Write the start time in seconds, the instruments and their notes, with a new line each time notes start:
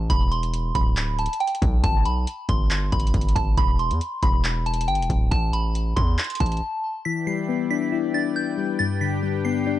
0.10 808-style bass E1, synth bell B5, kick, closed hi-hat
0.32 synth bell C6, closed hi-hat
0.43 closed hi-hat
0.54 closed hi-hat
0.75 808-style bass D1, synth bell B5, kick, closed hi-hat
0.97 clap, closed hi-hat
1.19 synth bell A5, closed hi-hat
1.26 closed hi-hat
1.33 closed hi-hat
1.40 synth bell G5, closed hi-hat
1.48 closed hi-hat
1.55 closed hi-hat
1.62 808-style bass B1, kick, closed hi-hat
1.84 808-style bass G1, synth bell A5, kick, closed hi-hat
2.05 808-style bass B1, synth bell B5, closed hi-hat
2.27 closed hi-hat
2.49 808-style bass G1, synth bell C6, kick, closed hi-hat
2.71 clap, closed hi-hat
2.92 808-style bass G1, synth bell B5, kick, closed hi-hat
3.00 closed hi-hat
3.07 closed hi-hat
3.14 808-style bass G1, kick, closed hi-hat
3.21 closed hi-hat
3.29 closed hi-hat
3.36 808-style bass G1, synth bell A5, kick, closed hi-hat
3.58 808-style bass E1, synth bell B5, kick, closed hi-hat
3.79 synth bell C6, closed hi-hat
3.91 808-style bass E2, closed hi-hat
4.01 closed hi-hat
4.23 808-style bass E1, synth bell B5, kick, closed hi-hat
4.45 clap, closed hi-hat
4.66 synth bell A5, closed hi-hat
4.74 closed hi-hat
4.81 closed hi-hat
4.88 808-style bass G1, synth bell G5, closed hi-hat
4.95 closed hi-hat
5.00 808-style bass E1, closed hi-hat
5.10 808-style bass D1, kick, closed hi-hat
5.31 808-style bass A1, synth bell A5, kick, closed hi-hat
5.53 synth bell B5, closed hi-hat
5.75 closed hi-hat
5.96 808-style bass E2, synth bell C6, kick, closed hi-hat
6.19 clap, closed hi-hat
6.24 closed hi-hat
6.30 closed hi-hat
6.35 closed hi-hat
6.40 808-style bass A1, synth bell A5, kick, closed hi-hat
6.46 closed hi-hat
6.52 closed hi-hat
6.57 closed hi-hat
7.05 synth keys E3, analog synth pad E4 B4 D5 G5, synth bell B6
7.27 synth keys G3, synth bell C7
7.49 synth keys B3
7.71 synth keys D4, synth bell B6
7.92 synth keys E4
8.14 synth keys D4, synth bell A6
8.36 synth bell G6
8.58 synth keys G3
8.79 synth keys G2, analog synth pad D4 G4, synth bell A6
9.01 synth keys D3, synth bell B6
9.23 synth keys G3
9.45 synth keys B3, synth bell C7
9.67 synth keys D4